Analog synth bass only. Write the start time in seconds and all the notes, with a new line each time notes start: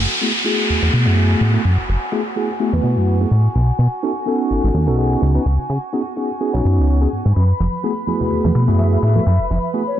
0.69 E2
0.82 E2
0.93 B2
1.06 F#2
1.41 A2
1.65 F#2
1.78 F#1
1.88 F#1
2.73 E2
2.83 B2
2.96 F#2
3.31 A2
3.55 B1
3.79 B2
4.50 A1
4.63 A1
4.74 D#2
4.87 B1
5.22 C#2
5.46 C#2
5.59 C#3
5.69 C#3
6.54 B1
6.65 F#2
6.78 C#2
7.12 G#2
7.25 G#2
7.36 F#2
7.60 F#1
8.31 E2
8.44 E2
8.55 B2
8.68 F#2
9.02 A2
9.26 F#2
9.39 F#1
9.50 F#1